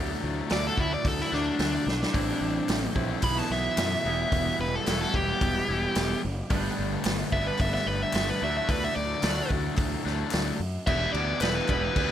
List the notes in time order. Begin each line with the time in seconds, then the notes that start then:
Already playing: D2 D3 E3 F#3 A3 D4 F#4
0.23 D2
0.50 D2 D3 E3 F#3 A3 D4 F#4 D5, snare, open hi-hat
0.67 A4
0.78 D2 E4, kick
0.94 D5
1.05 D2 A4, kick, open hi-hat
1.20 E4, snare
1.32 D2 D3 F#3 A3 D4, snare
1.59 D2, snare, open hi-hat
1.86 B1, snare
2.03 snare
2.13 A1 A2 E3 G3 A3 C4 E4, kick, open hi-hat
2.41 A1
2.68 A1, snare, clap, open hi-hat
2.95 A#1 A2 E3 G3 A3 C4 E4, kick
3.22 B1 B2 E3 F#3 B3 E4 B5, kick, clap, open hi-hat
3.37 A5, snare
3.50 B1 E5, snare
3.77 F#2, snare, clap, open hi-hat
4.04 E1 E3 G3 B3 E4 F#4
4.32 E1, kick, open hi-hat
4.59 E1 B4
4.75 A4
4.86 E1 E3 G3 B3 E4 F#4, snare, clap, open hi-hat
5.01 A4
5.14 E1 G4, kick
5.41 E1, kick, clap, open hi-hat
5.68 E1 E3 G3 B3 E4
5.95 E1, snare, clap, open hi-hat
6.24 F#1
6.50 G1 G2 D3 G3 A3 B3 D4 G4 B4, kick, open hi-hat
6.78 G1
7.04 G1, snare, clap, open hi-hat
7.32 G1 G2 D3 G3 A3 B3 D4 G4 B4 E5, kick
7.47 B4
7.58 G1 E5, kick, clap, open hi-hat
7.74 E5, snare
7.86 G1 B4
8.03 E5
8.13 G1 G2 D3 G3 B3 D4 E5, snare, clap, open hi-hat
8.30 B4
8.40 D2 D3 E3 F#3 A3 D4 F#4 D5 E5
8.57 E5
8.69 D2 B4, kick, open hi-hat
8.84 E5
8.96 D2 D5
9.22 D2 D3 E3 F#3 A3 D4 F#4 D5, snare, clap, open hi-hat
9.50 D2, kick
9.77 D2, kick, clap, open hi-hat
10.05 D2 D3 F#3 A3 D4, snare
10.31 D2, snare, clap, open hi-hat
10.60 F#2
10.87 E1 E3 G3 B3 D4 E4 G4 D5 E5, kick, crash
11.13 D2 E3 G3 B3 D4 E4 G4 D5, crash
11.40 E1 E3 G3 B3 D4 E4 G4 B4 D5, snare, clap, crash
11.68 E1 E3 G3 B3 D4 E4 G4 B4 D5, kick, clap, crash
11.96 D2 E3 G3 B3 D4 E4 G4 D5, kick, crash